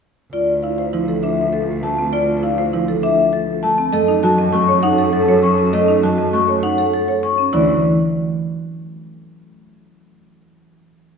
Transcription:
0.33 D2 F4 D5
0.63 E4 F4 F5
0.78 C5
0.93 F3 E4 F4
1.08 A4
1.23 D4 E5
1.28 F4
1.53 A4
1.58 F4
1.83 A3 A5
1.90 F4
1.98 C4
2.13 F4 D5
2.22 F4
2.43 E4 F5
2.53 F4
2.58 C5
2.73 F3 E4
2.84 F4
2.88 A4
3.03 D4 E5
3.16 F4
3.33 A4
3.47 F4
3.63 A3 A5
3.78 C4
3.93 F#2 A3 A4 D#5
4.08 D#4
4.23 F#3 F#4 A4 A5
4.38 D#5
4.53 A3 F#4 A4 C#6
4.68 C#5
4.83 D#4 F#5
4.87 A4
4.98 A4
5.13 A4
5.19 A4
5.29 C#5
5.43 C#4 C#6
5.50 A4
5.58 C#4
5.73 A3 A4 D#5
5.81 A4
5.88 D#4
6.03 F#3 F#4 A5
6.13 A4
6.18 D#5
6.33 A3 F#4 C#6
6.44 A4 C#5
6.63 D#4 F#5
6.76 A4
6.94 A4
7.07 A4 C#5
7.23 C#4 C#6
7.38 C#4
7.53 D2 E3 E4 D5

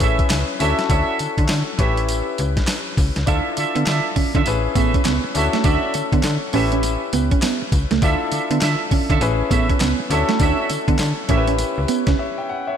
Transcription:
Already playing: C#4 E4 G#4 B4
0.00 A1 G#4 A4 C#5 E5, kick, closed hi-hat, tambourine
0.19 kick, closed hi-hat
0.30 C#2, snare, clap, closed hi-hat, tambourine
0.59 D2 C#4 E4 F#4 A4 C#5 D5 E5, closed hi-hat, tambourine
0.79 snare, closed hi-hat
0.89 D2 F#4 C#5 D5 E5, kick, closed hi-hat, tambourine
1.19 D3, closed hi-hat, tambourine
1.38 D3, kick, closed hi-hat
1.49 D3, snare, clap, closed hi-hat, tambourine
1.78 A1 C#4 E4 G4 A4 B4 C#5 E5, kick, closed hi-hat
1.97 closed hi-hat
2.09 closed hi-hat, tambourine
2.38 C#2, closed hi-hat, tambourine
2.57 kick, snare, closed hi-hat
2.67 snare, clap, closed hi-hat, tambourine
2.97 C#2, kick, open hi-hat, tambourine
3.16 C#2, snare, closed hi-hat
3.26 D2 D4 E4 F4 A4 D5 E5, kick, closed hi-hat, tambourine
3.57 D3 F4 A4 D5 E5, muted clean electric guitar stroke, closed hi-hat, tambourine
3.75 D3 B3, closed hi-hat
3.86 D3 F4 A4 D5 E5, muted clean electric guitar stroke, snare, clap, closed hi-hat, tambourine
4.16 D3 C#4, kick, open hi-hat
4.34 D3 C#4 F4 A4 D5 E5, kick, closed hi-hat
4.46 A1 C#4 E4 G#4 B4, muted clean electric guitar stroke, closed hi-hat, tambourine
4.75 A1 B3 G#4 A4 C#5 E5, kick, closed hi-hat, tambourine
4.94 C#4, kick, closed hi-hat
5.05 C#2 B3, snare, clap, closed hi-hat, tambourine
5.24 muted clean electric guitar stroke
5.34 D2 C#4 E4 F#4 A4 C#5 D5 E5, closed hi-hat, tambourine
5.53 A3, snare, closed hi-hat
5.64 D2 D4 F#4 C#5 D5 E5, kick, closed hi-hat, tambourine
5.94 D3, muted clean electric guitar stroke, closed hi-hat, tambourine
6.12 D3 B3, kick, closed hi-hat
6.23 D3, muted clean electric guitar stroke, snare, clap, closed hi-hat, tambourine
6.53 A1 C#4 E4 G4 A4 B4 C#5 E5, open hi-hat
6.72 C#4, closed hi-hat
6.83 muted clean electric guitar stroke, closed hi-hat, tambourine
7.13 C#2 B3, closed hi-hat, tambourine
7.31 C#4, kick, closed hi-hat
7.42 B3, snare, clap, closed hi-hat, tambourine
7.62 muted clean electric guitar stroke
7.72 C#2, kick, closed hi-hat, tambourine
7.91 C#2 A3, snare, closed hi-hat
8.02 D2 D4 E4 F4 A4 D5 E5, kick, closed hi-hat, tambourine
8.32 D3 F4 A4 D5 E5, muted clean electric guitar stroke, closed hi-hat, tambourine
8.51 D3 B3, closed hi-hat
8.61 D3 F4 A4 D5 E5, muted clean electric guitar stroke, snare, clap, closed hi-hat, tambourine
8.91 D3 C#4, kick, open hi-hat
9.10 D3 C#4 F4 A4 D5 E5, kick, closed hi-hat
9.21 A1 C#4 E4 G#4 B4, muted clean electric guitar stroke, closed hi-hat, tambourine
9.50 A1 B3 G#4 A4 C#5 E5, kick, closed hi-hat, tambourine
9.69 C#4, kick, closed hi-hat
9.80 C#2 B3, snare, clap, closed hi-hat, tambourine
9.99 muted clean electric guitar stroke
10.10 D2 C#4 E4 F#4 A4 C#5 D5 E5, closed hi-hat, tambourine
10.29 A3, snare, closed hi-hat
10.40 D2 D4 F#4 C#5 D5 E5, kick, closed hi-hat, tambourine
10.70 D3, muted clean electric guitar stroke, closed hi-hat, tambourine
10.88 D3 B3, kick, closed hi-hat
10.99 D3, muted clean electric guitar stroke, snare, clap, closed hi-hat, tambourine
11.28 A1 C#4 E4 G4 A4 A#4 C#5 E5, kick, closed hi-hat
11.37 B4
11.47 C#4, closed hi-hat
11.58 muted clean electric guitar stroke, closed hi-hat, tambourine
11.78 C#2
11.88 B3, closed hi-hat, tambourine
12.07 C#2 C#4, kick, snare, closed hi-hat
12.19 C#5 E5
12.38 E5 G5
12.49 F#5
12.67 C#5 E5

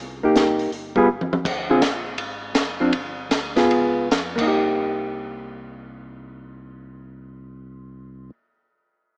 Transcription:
0.00 C2, open hi-hat
0.23 A#3 D#4 G4
0.36 snare, closed hi-hat
0.59 open hi-hat
0.72 G1, open hi-hat
0.96 G3 B3 F4 G#4, kick
1.21 mid tom
1.33 mid tom
1.45 D2, kick, crash
1.70 D3 C4 F4 G#4
1.81 A#1, snare, hi-hat pedal, ride
2.18 G#1, ride
2.54 F1, snare, hi-hat pedal, ride
2.80 F3 C4 D4
2.92 G1, ride
3.29 D2, snare, hi-hat pedal, ride
3.56 B3 F4 G#4, snare, ride
3.69 C#2, ride
4.11 F2, snare, hi-hat pedal, ride
4.36 C2 A#3, kick, crash
4.41 D#4
4.47 G4

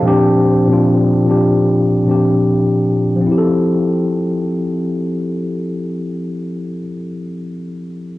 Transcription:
Already playing: C5 A5
0.02 A#2 F3 C4
0.07 D4 G4
0.67 A#2 F3 C4
0.72 D4 F4
1.25 A#2 F3 C4
1.30 D4 G4
2.05 A#2 F3 C4
2.09 D4 G4
3.16 F3
3.21 C4
3.27 E4
3.32 G4
3.38 A4

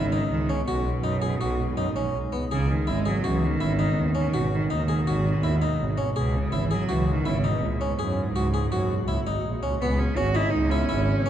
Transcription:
Already playing: G#1 C#3 D#3 B3 C#4
0.12 D#4
0.30 C#2 D#3
0.48 C#3 C#4
0.66 B1 B2 G#3 D#4 F#4
1.03 F#2 D#4
1.22 G#4
1.41 B1 F#4
1.77 F#2 D#4
1.95 A#1 C#4
2.14 B1
2.32 C#2 B3
2.49 C#2 C#3 B3 C#4 G#4
2.71 D#3
2.87 G#1 G#3 E4
3.05 F#3 G#4
3.24 C#2 E3 F#4
3.44 D#3
3.60 G#1 E4
3.79 D#4
3.97 D#2
4.15 D#3 C#4
4.33 G#1 B2 G#3 F#4
4.54 D#3
4.70 D#2 D#4
4.74 D#3
4.88 G#4
5.06 G#1 F#4
5.42 D#2 E4
5.62 D#4
5.79 G#1
5.98 C#4
6.15 C#2 B2 C#3 E3 B3 G#4
6.36 C#3
6.52 G#1 E3 E4
6.71 F#3 G#4
6.89 C#2 E3 F#4
7.10 D#3
7.26 G#1 C#3 E4
7.44 B2 D#4
7.62 C#2 A#2
7.81 G#2 C#4
7.97 F#2 A#2 G#3 F#4 G#4
8.35 C#2 F#4
8.54 G#4
8.71 F#2 F#4
9.07 C#2 E4
9.25 G#1 D#4
9.43 A#1
9.62 C#2 C#4
9.80 C#2 C#3 B3 C#4
9.99 C#4
10.16 G#1 C#4 F#4
10.35 D#4 E4
10.52 C#2 D#4
10.70 C#4 E4
10.89 G#1 E4
11.26 D#2 C#4

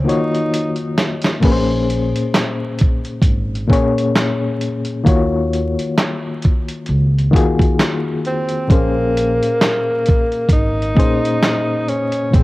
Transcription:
0.04 D#3 A#3 D#4 F4 F#4
0.09 C#5, closed hi-hat
0.34 closed hi-hat
0.54 closed hi-hat
0.76 closed hi-hat
0.98 snare, closed hi-hat
1.22 snare, closed hi-hat
1.40 A#1 A#2 A#3 C#4 G#4, kick, crash
1.45 B4
1.51 C5
1.90 closed hi-hat
2.16 closed hi-hat
2.34 snare, clap, closed hi-hat
2.79 kick, closed hi-hat
3.05 closed hi-hat
3.22 G#1, kick, closed hi-hat
3.55 closed hi-hat
3.68 A#2 A#3 C#4 G#4, kick
3.73 C#5, closed hi-hat
3.98 closed hi-hat
4.16 snare, clap, closed hi-hat
4.61 closed hi-hat
4.85 closed hi-hat
5.04 D#2 D#3 A#3 F4 F#4, kick, closed hi-hat
5.09 C#5
5.53 closed hi-hat
5.79 closed hi-hat
5.98 snare, clap, closed hi-hat
6.42 kick, closed hi-hat
6.69 closed hi-hat
6.86 C#2, closed hi-hat
7.18 closed hi-hat
7.31 D#3 A#3 F4 F#4, kick
7.36 G#4, closed hi-hat
7.59 kick, closed hi-hat
7.79 snare, clap, closed hi-hat
8.25 C4, closed hi-hat
8.49 closed hi-hat
8.67 A#1 A#2 A#3 C#4 G#4, kick, closed hi-hat
8.72 A#3 C5
9.17 closed hi-hat
9.43 closed hi-hat
9.61 snare, clap, closed hi-hat
10.06 kick, closed hi-hat
10.32 closed hi-hat
10.49 G#1, kick, closed hi-hat
10.53 D#4
10.82 closed hi-hat
10.94 A#2 A#3 C#4 G#4, kick
10.99 C5, closed hi-hat
11.25 closed hi-hat
11.43 snare, clap, closed hi-hat
11.88 C#4, closed hi-hat
12.12 closed hi-hat
12.31 A#1 A#2 C#3 A#3 C4 G#4, kick, closed hi-hat
12.36 C5

